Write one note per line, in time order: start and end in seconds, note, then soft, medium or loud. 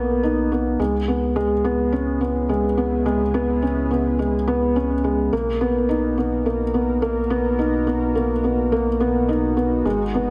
0.00 0.77 B1 medium
0.00 0.80 B2 medium
0.00 0.82 A#3 medium
0.00 0.52 B3 medium
0.00 0.23 D#4 medium
0.00 0.79 D#4 medium
0.00 2.61 F#4 medium
0.00 0.79 A#4 medium
0.23 0.50 D#4 medium
0.52 0.78 B3 medium
0.79 5.30 C#2 medium
0.79 5.32 C#3 medium
0.79 0.96 G#3 medium
1.05 5.32 B3 medium
1.05 1.35 B3 medium
1.19 5.32 E4 medium
1.36 1.52 G#3 medium
1.55 7.13 G#4 medium
1.64 1.91 B3 medium
1.92 2.19 C#4 medium
2.21 2.48 B3 medium
2.49 2.65 G#3 medium
2.77 3.04 B3 medium
3.06 3.22 G#3 medium
3.34 3.61 B3 medium
3.62 3.89 C#4 medium
3.91 4.18 B3 medium
4.19 4.35 G#3 medium
4.48 4.74 B3 medium
4.76 4.92 C#4 medium
5.04 5.31 G#3 medium
5.33 9.82 B1 medium
5.33 10.30 B2 medium
5.33 5.49 A#3 medium
5.42 10.30 D#4 medium
5.42 10.30 A#4 medium
5.55 10.30 F#4 medium
5.61 5.88 B3 medium
5.89 6.16 D#4 medium
6.18 6.44 B3 medium
6.46 6.62 A#3 medium
6.74 7.01 B3 medium
7.02 7.18 A#3 medium
7.30 7.57 B3 medium
7.59 7.86 D#4 medium
7.87 8.14 B3 medium
8.15 8.31 A#3 medium
8.44 8.71 B3 medium
8.72 8.88 A#3 medium
9.00 9.27 B3 medium
9.29 9.55 D#4 medium
9.57 9.84 B3 medium
9.85 10.30 G#1 medium
9.85 10.01 G#3 medium
10.07 10.30 G#3 medium
10.14 10.30 B3 medium